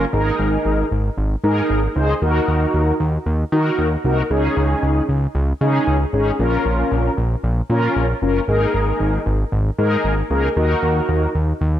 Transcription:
0.13 analog synth bass G#1, analog polysynth D#4 G#4 A#4
0.39 analog synth bass G#1
0.65 analog synth bass G#1
0.91 analog synth bass G#1
1.18 analog synth bass G#1
1.44 analog synth bass G#2, analog polysynth D#4 G#4 A#4
1.70 analog synth bass G#1
1.96 analog synth bass C#2, analog polysynth D#4 G#4 C5
2.22 analog synth bass D#2, analog polysynth D#4 F#4 A#4
2.48 analog synth bass D#2
2.74 analog synth bass D#2
3.00 analog synth bass D#2
3.26 analog synth bass D#2
3.52 analog synth bass D#3, analog polysynth D#4 F#4 A#4
3.78 analog synth bass D#2
4.04 analog synth bass C2, analog polysynth D#4 F#4 A#4
4.30 analog synth bass C#2, analog polysynth C#4 D#4 G#4
4.57 analog synth bass C#2
4.83 analog synth bass C#2
5.09 analog synth bass C#2
5.35 analog synth bass C#2
5.61 analog synth bass C#3, analog polysynth C#4 D#4 G#4
5.87 analog synth bass C#2
6.13 analog synth bass G#1, analog polysynth C#4 D#4 G#4
6.39 analog synth bass A#1, analog polysynth C#4 F4 A#4
6.65 analog synth bass A#1
6.91 analog synth bass A#1
7.17 analog synth bass A#1
7.43 analog synth bass A#1
7.70 analog synth bass A#2, analog polysynth C#4 F4 A#4
7.96 analog synth bass A#1
8.22 analog synth bass F#1, analog polysynth C#4 F4 A#4
8.48 analog synth bass G#1, analog polysynth D#4 G#4 A#4
8.74 analog synth bass G#1
9.00 analog synth bass G#1
9.26 analog synth bass G#1
9.52 analog synth bass G#1
9.78 analog synth bass G#2, analog polysynth D#4 G#4 A#4
10.04 analog synth bass G#1
10.30 analog synth bass C#2, analog polysynth D#4 G#4 A#4
10.57 analog synth bass D#2, analog polysynth D#4 F#4 A#4
10.83 analog synth bass D#2
11.09 analog synth bass D#2
11.35 analog synth bass D#2
11.61 analog synth bass D#2

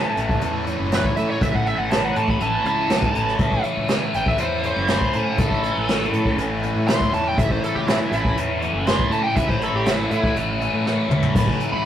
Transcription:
Already playing: overdriven electric guitar A2 E3 A3 C#4 E4, lead electric guitar A5
0.17 fingered electric bass A1, snare, closed hi-hat
0.29 kick
0.40 fingered electric bass E2, overdriven electric guitar A2 E3 A3 C#4 E4, closed hi-hat
0.65 overdriven electric guitar A3 C#4 E4, closed hi-hat
0.80 fingered electric bass F#1
0.91 overdriven electric guitar E3 A3 C#4 E4, lead electric guitar B4, snare, closed hi-hat
1.04 lead electric guitar C#5, kick, snare
1.16 fingered electric bass A2, overdriven electric guitar A3 C#4 E4, lead electric guitar E5, closed hi-hat
1.30 lead electric guitar C#5
1.41 fingered electric bass A1, overdriven electric guitar A2 E3 A3 C#4 E4, lead electric guitar E5, kick, closed hi-hat
1.54 lead electric guitar F#5, kick
1.66 lead electric guitar E5, closed hi-hat
1.78 fingered electric bass A1, lead electric guitar F#5
1.90 overdriven electric guitar E3 A3 C#4 E4, lead electric guitar A5, snare, closed hi-hat
2.04 lead electric guitar F#5
2.16 fingered electric bass A2, lead electric guitar A5, closed hi-hat
2.28 lead electric guitar B5, kick
2.40 fingered electric bass A1, overdriven electric guitar A2 E3 A3 C#4 E4, lead electric guitar A5, closed hi-hat
2.63 fingered electric bass C#2, overdriven electric guitar A3 C#4 E4, closed hi-hat
2.67 lead electric guitar A5
2.88 fingered electric bass B1, overdriven electric guitar E3 A3 C#4 E4, snare, closed hi-hat
3.02 kick
3.13 fingered electric bass A1, overdriven electric guitar A3 C#4 E4, closed hi-hat
3.28 snare
3.38 fingered electric bass A1, overdriven electric guitar A2 E3 A3 C#4 E4, kick, closed hi-hat
3.52 kick
3.64 closed hi-hat
3.77 fingered electric bass C#2
3.88 overdriven electric guitar E3 A3 C#4 E4, snare, closed hi-hat
4.14 fingered electric bass A1, lead electric guitar G5, closed hi-hat
4.26 lead electric guitar E5, kick
4.37 fingered electric bass E2, overdriven electric guitar A2 E3 A3 C#4 E4, lead electric guitar C5, closed hi-hat
4.62 overdriven electric guitar A3 C#4 E4, lead electric guitar C5, closed hi-hat
4.76 fingered electric bass F#1
4.87 overdriven electric guitar E3 A3 C#4 E4, lead electric guitar C5, snare, closed hi-hat
5.01 kick
5.13 fingered electric bass A2, overdriven electric guitar A3 C#4 E4, closed hi-hat
5.37 fingered electric bass A1, overdriven electric guitar A2 E3 A3 C#4 E4, lead electric guitar A4, kick, closed hi-hat
5.51 kick
5.63 closed hi-hat
5.76 fingered electric bass A1
5.88 overdriven electric guitar E3 A3 C#4 E4, snare, closed hi-hat
6.02 snare
6.12 fingered electric bass A2, closed hi-hat
6.25 kick
6.36 fingered electric bass A1, overdriven electric guitar A2 E3 A3 C#4 E4, closed hi-hat
6.62 overdriven electric guitar A3 C#4 E4, closed hi-hat
6.75 fingered electric bass A2
6.87 overdriven electric guitar E3 A3 C#4 E4, lead electric guitar C6, snare, closed hi-hat
7.00 kick, snare
7.11 fingered electric bass E2, overdriven electric guitar A3 C#4 E4, lead electric guitar A5, closed hi-hat
7.27 lead electric guitar G5
7.36 fingered electric bass A1, overdriven electric guitar A2 E3 A3 C#4 E4, lead electric guitar E5, kick, closed hi-hat
7.50 lead electric guitar C5, kick
7.64 lead electric guitar A4, closed hi-hat
7.75 fingered electric bass C#2, lead electric guitar G4
7.87 overdriven electric guitar E3 A3 C#4 E4, lead electric guitar E4, snare, closed hi-hat
8.11 fingered electric bass A1, lead electric guitar E4, snare, closed hi-hat
8.25 kick
8.36 fingered electric bass E2, overdriven electric guitar A2 E3 A3 C#4 E4, closed hi-hat
8.61 overdriven electric guitar A3 C#4 E4, closed hi-hat
8.73 fingered electric bass F#1
8.85 overdriven electric guitar E3 A3 C#4 E4, lead electric guitar C6, snare, closed hi-hat
8.99 kick
9.10 fingered electric bass A2, overdriven electric guitar A3 C#4 E4, lead electric guitar A5, closed hi-hat
9.23 lead electric guitar G5
9.35 fingered electric bass A1, overdriven electric guitar A2 E3 A3 C#4, lead electric guitar E5, kick, closed hi-hat
9.39 overdriven electric guitar E4
9.49 lead electric guitar C5, kick
9.61 lead electric guitar A4, closed hi-hat
9.73 fingered electric bass A1, lead electric guitar G4
9.85 overdriven electric guitar E3 A3 C#4 E4, snare, closed hi-hat
9.90 lead electric guitar E4
10.11 fingered electric bass A2, lead electric guitar E4, closed hi-hat
10.24 kick
10.35 fingered electric bass A1, overdriven electric guitar A2 E3 A3 C#4 E4, closed hi-hat
10.61 overdriven electric guitar A3 C#4 E4, closed hi-hat
10.73 fingered electric bass A2
10.85 overdriven electric guitar E3 A3 C#4 E4, snare
11.09 fingered electric bass E2, overdriven electric guitar C#4 E4, mid tom
11.13 overdriven electric guitar A3
11.23 floor tom
11.34 fingered electric bass A1, overdriven electric guitar A2 E3 A3 C#4 E4, kick, closed hi-hat, crash
11.48 kick
11.60 closed hi-hat
11.72 fingered electric bass C#2, lead electric guitar B5

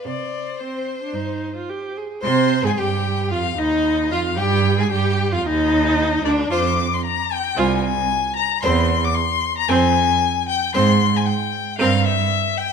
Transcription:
0.03 cello C3, violin C5 D5
0.59 viola C4, violin C5
1.02 viola D4
1.14 cello G2, viola D#4
1.56 viola F4
1.69 viola G4
1.97 viola G#4
2.22 cello C3, violin C5 C6, viola C5
2.64 cello G#2, viola G#4, violin G#4 G#5
2.77 cello G2, viola G4, violin G4 G5
3.31 cello F2, violin F4 F5, viola F4
3.57 cello D#2, violin D#4 D#5, viola D#4
4.11 cello F2, violin F4 F5, viola F4
4.37 cello G2, violin G4 G5, viola G4
4.78 cello G#2, viola G#4, violin G#4 G#5
4.91 cello G2, viola G4, violin G4 G5
5.32 cello F2, viola F4, violin F4 F5
5.46 cello D#2, viola D#4, violin D#4 D#5
6.25 cello D2, viola D4, violin D4 D5
6.50 cello F2, viola F4, violin C5 D6
6.94 violin C6
7.05 violin A#5
7.32 violin G5
7.56 cello C2, viola F4, violin C5 G#5
7.84 violin G#5
8.36 violin A#5
8.63 cello E2, viola C4, violin C5 C6
9.04 violin D6
9.15 violin C6
9.58 violin A#5
9.68 cello F2, viola C4, violin C5 G#5
10.49 violin G5
10.74 cello G#2, viola C4, violin C5 C6
11.17 violin G#5
11.26 violin G5
11.78 cello G2, viola C4, violin A#4 F5
12.07 violin E5
12.57 violin G5

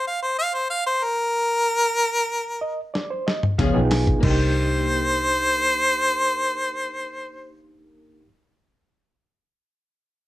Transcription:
0.07 harmonica F5
0.22 harmonica C5
0.38 harmonica F5
0.54 harmonica C5
0.70 harmonica F5
0.87 harmonica C5
1.03 harmonica A#4
2.61 reed electric piano D#5
2.94 reed electric piano D5, snare
3.10 reed electric piano C5
3.27 reed electric piano D#5, snare
3.43 mid tom
3.58 fingered electric bass C#2, clean electric guitar F3 B3 C#4 G#4, reed electric piano F5, kick, snare, closed hi-hat
3.74 fingered electric bass B1, reed electric piano B3 D#4 F4 G#4 G5
3.90 reed electric piano G#5, snare, open hi-hat
4.07 kick, closed hi-hat
4.19 fingered electric bass C2, reed electric piano A#3 D4, clean electric guitar A#3, crash
4.23 reed electric piano D#4 G4, harmonica C5, kick
4.30 clean electric guitar G4

